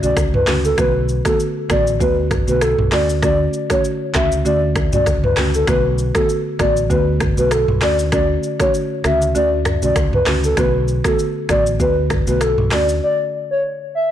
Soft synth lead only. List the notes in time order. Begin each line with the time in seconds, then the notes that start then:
0.04 D5
0.35 B4
0.65 A4
0.79 B4
1.27 A4
1.71 D5
2.02 B4
2.49 B4
2.62 A4
2.93 D5
3.24 D5
3.71 C#5
4.15 E5
4.46 D5
4.93 D5
5.24 B4
5.55 A4
5.69 B4
6.16 A4
6.60 D5
6.91 B4
7.38 B4
7.52 A4
7.83 D5
8.13 D5
8.61 C#5
9.05 E5
9.36 D5
9.84 D5
10.14 B4
10.45 A4
10.59 B4
11.06 A4
11.50 D5
11.81 B4
12.28 B4
12.42 A4
12.73 D5
13.03 D5
13.51 C#5
13.95 E5